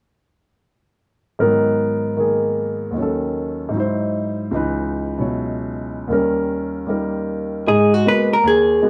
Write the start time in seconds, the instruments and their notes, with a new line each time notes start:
1.39 grand piano G#2 D#3 F#3 B3 A#4
2.16 grand piano D#3 A#3 G#4
2.91 grand piano D#2 D#3
2.97 grand piano F#3 C#4
3.02 grand piano A4
3.69 grand piano G#2 D#4
3.74 grand piano F#3 E4
3.80 grand piano C5
4.51 grand piano C#2 C#3 E3 D#4
4.56 grand piano B4
5.18 grand piano B2 F#3 E4 C#5
6.08 grand piano D#2 D#3 G3 C#4
6.13 grand piano A#4
6.87 grand piano G3 A#3 D#4 A#4
7.67 grand piano G#2 G#3, hollow-body jazz guitar G#4
7.94 hollow-body jazz guitar F#4
8.06 grand piano G#3 A#3 B3 F#4, hollow-body jazz guitar B4
8.33 hollow-body jazz guitar A#4
8.44 grand piano D#2, hollow-body jazz guitar G#4
8.82 grand piano G#3 A#3 B3 F#4